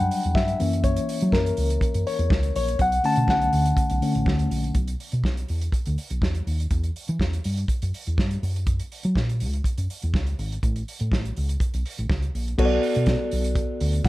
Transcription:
Already playing: reed electric piano F#3 G3 D4 F#5 G5 A5 B5
0.00 fingered electric bass F#2
0.11 open hi-hat
0.23 fingered electric bass E2, closed hi-hat
0.35 fingered electric bass G2, reed electric piano E5, kick, snare
0.48 closed hi-hat
0.59 fingered electric bass F#2, reed electric piano E3 A#3 C#4, open hi-hat
0.73 closed hi-hat
0.84 reed electric piano C#5, kick, closed hi-hat
0.96 closed hi-hat
1.09 open hi-hat
1.20 fingered electric bass F#3, closed hi-hat
1.32 fingered electric bass F#2, reed electric piano A#4, kick, snare
1.46 closed hi-hat
1.57 fingered electric bass C#2, open hi-hat
1.70 closed hi-hat
1.81 kick, closed hi-hat
1.94 fingered electric bass F#2, closed hi-hat
2.07 reed electric piano C#5, open hi-hat
2.19 fingered electric bass E2, closed hi-hat
2.30 fingered electric bass C#2, kick, snare
2.43 closed hi-hat
2.56 fingered electric bass A#1, reed electric piano C#5, open hi-hat
2.68 closed hi-hat
2.79 fingered electric bass B1, reed electric piano F#5, kick, closed hi-hat
2.92 closed hi-hat
3.04 reed electric piano D3 A3 C#4 A5, open hi-hat
3.16 fingered electric bass B2, closed hi-hat
3.28 fingered electric bass B1, reed electric piano F#5, kick, snare
3.42 closed hi-hat
3.53 fingered electric bass D2, open hi-hat
3.66 closed hi-hat
3.77 kick, closed hi-hat
3.90 fingered electric bass B1, closed hi-hat
4.02 reed electric piano D3 A3 C#4, open hi-hat
4.15 fingered electric bass A1, closed hi-hat
4.26 fingered electric bass D2, kick, snare
4.39 closed hi-hat
4.50 fingered electric bass A#1, open hi-hat
4.64 closed hi-hat
4.75 fingered electric bass B1, kick, closed hi-hat
4.88 closed hi-hat
5.00 open hi-hat
5.12 fingered electric bass B2, closed hi-hat
5.24 fingered electric bass B1, kick, snare
5.37 closed hi-hat
5.48 fingered electric bass E2, open hi-hat
5.61 closed hi-hat
5.72 kick, closed hi-hat
5.86 fingered electric bass D2, closed hi-hat
5.98 open hi-hat
6.10 fingered electric bass B1, closed hi-hat
6.22 fingered electric bass E2, kick, snare
6.35 closed hi-hat
6.47 fingered electric bass D#2, open hi-hat
6.60 closed hi-hat
6.71 fingered electric bass E2, kick, closed hi-hat
6.83 closed hi-hat
6.96 open hi-hat
7.08 fingered electric bass E3, closed hi-hat
7.19 fingered electric bass E2, kick, snare
7.33 closed hi-hat
7.44 fingered electric bass G2, open hi-hat
7.57 closed hi-hat
7.68 kick, closed hi-hat
7.82 fingered electric bass F#2, closed hi-hat
7.94 open hi-hat
8.07 fingered electric bass E2, closed hi-hat
8.18 fingered electric bass G2, kick, snare
8.31 closed hi-hat
8.43 fingered electric bass F#2, open hi-hat
8.56 closed hi-hat
8.67 kick, closed hi-hat
8.80 closed hi-hat
8.92 open hi-hat
9.03 fingered electric bass F#3, closed hi-hat
9.15 fingered electric bass A#2, kick, snare
9.29 closed hi-hat
9.40 fingered electric bass C#2, open hi-hat
9.53 closed hi-hat
9.64 kick, closed hi-hat
9.78 fingered electric bass F#2, closed hi-hat
9.90 open hi-hat
10.02 fingered electric bass E2, closed hi-hat
10.14 fingered electric bass C#2, kick, snare
10.27 closed hi-hat
10.39 fingered electric bass G#1, open hi-hat
10.52 closed hi-hat
10.63 fingered electric bass A1, kick, closed hi-hat
10.76 closed hi-hat
10.88 open hi-hat
11.00 fingered electric bass A2, closed hi-hat
11.12 fingered electric bass A1, kick, snare
11.25 closed hi-hat
11.37 fingered electric bass C#2, open hi-hat
11.49 closed hi-hat
11.60 kick, closed hi-hat
11.74 fingered electric bass B1, closed hi-hat
11.86 open hi-hat
11.98 fingered electric bass A1, closed hi-hat
12.10 fingered electric bass C#2, kick, snare
12.22 closed hi-hat
12.35 fingered electric bass A#1, open hi-hat
12.48 closed hi-hat
12.58 fingered electric bass B1, reed electric piano B3 F#4 A4 C#5, kick, crash
12.65 reed electric piano D5
12.83 open hi-hat
12.95 fingered electric bass B2, closed hi-hat
13.06 kick, snare, closed hi-hat
13.31 fingered electric bass B1, open hi-hat
13.44 closed hi-hat
13.56 kick, closed hi-hat
13.81 fingered electric bass D2, open hi-hat
13.93 closed hi-hat
14.04 fingered electric bass B2, kick, closed hi-hat

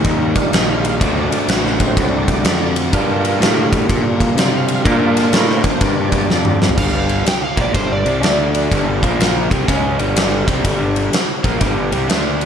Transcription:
Already playing: overdriven electric guitar D#3 G3 A#3 D#4 G4
0.04 picked electric bass D#2, kick, ride
0.35 tonewheel organ G3 D4 F4, muted picked electric bass stroke, kick, ride
0.53 picked electric bass A#1, tonewheel organ D#5, snare, ride
0.69 tonewheel organ F5
0.85 ride
1.00 picked electric bass D2, overdriven electric guitar D3 A3 C4 F#4, tonewheel organ D5, kick, ride
1.31 muted picked electric bass stroke, ride
1.48 picked electric bass A1, tonewheel organ F#4, snare, ride
1.66 tonewheel organ C5, snare
1.78 tonewheel organ F#3 C4, kick, ride
1.96 picked electric bass C2, tonewheel organ D5, kick, ride
2.28 tonewheel organ D5, kick, ride
2.45 picked electric bass F2, snare, ride
2.76 ride
2.91 overdriven electric guitar G2 D3 G3 A#3 D4, picked electric bass G2, tonewheel organ A#3 F4, kick, ride
3.25 ride
3.40 picked electric bass A2, snare, ride
3.73 kick, ride
3.89 picked electric bass A#2, kick, ride
4.20 kick, ride
4.37 picked electric bass C3, tonewheel organ D5, snare, ride
4.55 tonewheel organ F5
4.68 ride
4.84 overdriven electric guitar G2 D3 G3 A#3 D4, picked electric bass A#2, tonewheel organ A#3 F4 D5, kick, ride
5.17 snare, ride
5.33 picked electric bass A2, tonewheel organ F4, snare, ride
5.50 tonewheel organ C5, snare
5.64 muted picked electric bass stroke, kick, ride
5.81 picked electric bass G2, tonewheel organ D5, kick, ride
6.12 tonewheel organ D5, kick, ride
6.29 picked electric bass F2, snare
6.45 mid tom
6.62 snare
6.69 floor tom
6.77 picked electric bass G1, overdriven electric guitar G2 D3 G3, electric slide guitar F5, kick, crash
7.09 ride
7.25 electric slide guitar G5, muted picked electric bass stroke, muted overdriven electric guitar stroke, snare, ride
7.44 electric slide guitar F5
7.56 picked electric bass A#1, overdriven electric guitar A#2 F3 A#3, kick, ride
7.61 electric slide guitar D5
7.73 picked electric bass G1, overdriven electric guitar G2 D3 G3, electric slide guitar C5, kick, ride
7.92 electric slide guitar D5
8.05 picked electric bass C2, overdriven electric guitar C3 G3 C4, ride
8.22 picked electric bass D2, overdriven electric guitar D3 A3 D4, snare, ride
8.55 ride
8.71 picked electric bass G1, overdriven electric guitar G2 D3 G3, kick, ride
9.02 picked electric bass A#1, overdriven electric guitar A#2 F3 A#3, kick, ride
9.21 snare, ride
9.50 picked electric bass C2, overdriven electric guitar C3 G3 C4, kick, ride
9.67 picked electric bass C#2, overdriven electric guitar C#3 G#3 C#4, kick, ride
9.98 picked electric bass G1, overdriven electric guitar G2 D3 G3, ride
10.16 snare, ride
10.47 picked electric bass C2, overdriven electric guitar C3 G3 C4, kick, ride
10.64 picked electric bass G1, overdriven electric guitar G2 D3 G3, kick, ride
10.96 ride
11.12 muted picked electric bass stroke, muted overdriven electric guitar stroke, snare, ride
11.43 picked electric bass A#1, overdriven electric guitar A#2 F3 A#3, kick, ride
11.60 picked electric bass G1, overdriven electric guitar G2 D3 G3, kick, ride
11.92 picked electric bass C2, overdriven electric guitar C3 G3 C4, ride
12.08 picked electric bass D2, overdriven electric guitar D3 A3 D4, snare, ride
12.41 ride

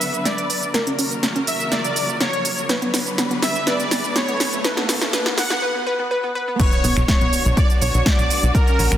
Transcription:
Already playing: string section D3 F#3 B3 D4 B4, supersaw synth E5, riser
0.01 open hi-hat, shaker
0.14 closed hi-hat, shaker
0.25 supersaw synth D5, snare, closed hi-hat, shaker
0.38 closed hi-hat
0.50 open hi-hat, shaker
0.62 closed hi-hat, shaker
0.74 string section C#3 F#3 A#3 F#4 A#4, synth pluck A#4, snare, closed hi-hat, shaker
0.87 synth pluck C#4, closed hi-hat
0.99 synth pluck C#4, open hi-hat, shaker
1.11 closed hi-hat, shaker
1.23 synth pluck C#4, snare, closed hi-hat, shaker
1.36 synth pluck C#4, closed hi-hat
1.47 supersaw synth E5, open hi-hat, shaker
1.60 closed hi-hat, shaker
1.72 supersaw synth D5, snare, closed hi-hat, shaker
1.84 closed hi-hat, shaker
1.96 open hi-hat, shaker
2.09 closed hi-hat, shaker
2.21 supersaw synth C#5, snare, closed hi-hat, shaker
2.33 closed hi-hat
2.45 open hi-hat, shaker
2.58 closed hi-hat, shaker
2.69 string section D3 B3 D4 B4, synth pluck B4, snare, closed hi-hat, shaker
2.82 synth pluck B3, closed hi-hat
2.94 synth pluck B3, snare, open hi-hat, shaker
3.06 closed hi-hat, shaker
3.18 synth pluck B3, snare, closed hi-hat, shaker
3.31 synth pluck B3, closed hi-hat
3.42 supersaw synth E5, snare, open hi-hat, shaker
3.55 closed hi-hat, shaker
3.67 synth pluck B4, supersaw synth D5, snare, closed hi-hat, shaker
3.80 synth pluck B3, closed hi-hat, shaker
3.91 synth pluck B3, snare, open hi-hat, shaker
4.04 closed hi-hat, shaker
4.16 synth pluck B3, supersaw synth C#5, snare, closed hi-hat, shaker
4.28 synth pluck B3, closed hi-hat
4.40 snare, open hi-hat, shaker
4.53 closed hi-hat, shaker
4.64 string section D3 A3 E4 A4, synth pluck B4, snare, closed hi-hat, shaker
4.77 synth pluck B3, snare, closed hi-hat
4.89 synth pluck B3, snare, open hi-hat, shaker
5.02 snare, closed hi-hat, shaker
5.13 synth pluck B4, snare, closed hi-hat, shaker
5.26 synth pluck B3, snare, closed hi-hat
5.38 synth pluck B3, supersaw synth F#5, snare, open hi-hat, shaker
5.50 snare, closed hi-hat, shaker
5.62 synth pluck B4
5.75 synth pluck B3
5.86 synth pluck B4
5.99 synth pluck B3
6.11 synth pluck B4
6.24 synth pluck B3
6.35 synth pluck B4
6.48 synth pluck B3
6.60 string section D3 F#3 B3 D4 F#4, synth pluck B4, supersaw synth C#5, violin section C#6, kick, closed hi-hat, crash, impact, shaker
6.72 synth pluck B3, closed hi-hat, shaker
6.84 analog synth bass B1, synth pluck B3, open hi-hat, shaker
6.97 analog synth bass B1, finger snap, closed hi-hat, shaker
7.08 synth pluck B3, supersaw synth C#5, violin section C#6, kick, snare, closed hi-hat, shaker
7.21 analog synth bass B1, synth pluck B3, closed hi-hat
7.33 open hi-hat, shaker
7.45 analog synth bass B1, closed hi-hat, shaker
7.57 supersaw synth D5, violin section D6, kick, closed hi-hat, shaker
7.70 closed hi-hat, shaker
7.82 analog synth bass B1, supersaw synth C#5, violin section C#6, open hi-hat, shaker
7.94 analog synth bass B1, closed hi-hat, shaker
8.06 supersaw synth D5, violin section D6, kick, snare, closed hi-hat, shaker
8.19 analog synth bass B1, closed hi-hat, shaker
8.30 open hi-hat, shaker
8.43 analog synth bass B1, closed hi-hat, shaker
8.55 string section A#3 A#4, supersaw synth A#4, synth pluck A#4, violin section A#5, kick, closed hi-hat, shaker
8.67 synth pluck C#4, closed hi-hat, shaker
8.79 analog synth bass A#1, synth pluck C#4, open hi-hat, shaker
8.92 analog synth bass A#1, finger snap, closed hi-hat, shaker

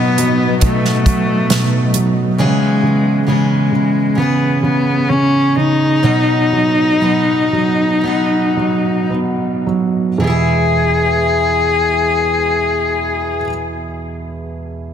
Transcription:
Already playing: felt piano B2 F#3, steel-string acoustic guitar F#3 B3 D#4 F#4, ambient pad F#3 B3 D#4 B4 D#5, cello B3, downlifter
0.18 felt piano F#3, closed hi-hat
0.60 felt piano B2, steel-string acoustic guitar F#3 B3, kick, closed hi-hat
0.64 cello A3, steel-string acoustic guitar D#4 F#4
0.85 snare
1.06 felt piano F#3, kick, closed hi-hat
1.50 felt piano B2, snare, closed hi-hat
1.94 felt piano F#3, closed hi-hat
2.38 steel-string acoustic guitar C#3 E3 B3 C#4 G#4, felt piano C#3, cello G#3
2.83 felt piano C#3
3.27 felt piano C#3, steel-string acoustic guitar E3 B3 C#4 G#4, cello G#3
3.72 felt piano C#3
4.15 felt piano C#3, steel-string acoustic guitar E3 B3, cello B3
4.20 steel-string acoustic guitar C#4 G#4
4.63 felt piano C#3, cello B3
5.09 felt piano C#3, cello C#4
5.56 felt piano C#3, cello D#4
6.03 steel-string acoustic guitar B2 F#3 B3 D#4 F#4, felt piano B2
6.52 felt piano F#3
7.00 steel-string acoustic guitar F#3 B3 D#4 F#4, felt piano B3
7.53 felt piano F#3
8.01 steel-string acoustic guitar F#3 B3, felt piano B3
8.05 steel-string acoustic guitar D#4 F#4
8.57 felt piano F#3
9.10 felt piano B3
9.67 felt piano F#3
10.18 felt piano E2 B2, steel-string acoustic guitar E3
10.23 felt piano E3 G#3, steel-string acoustic guitar B3, cello G#4
10.27 felt piano B3 E4, steel-string acoustic guitar E4 G#4

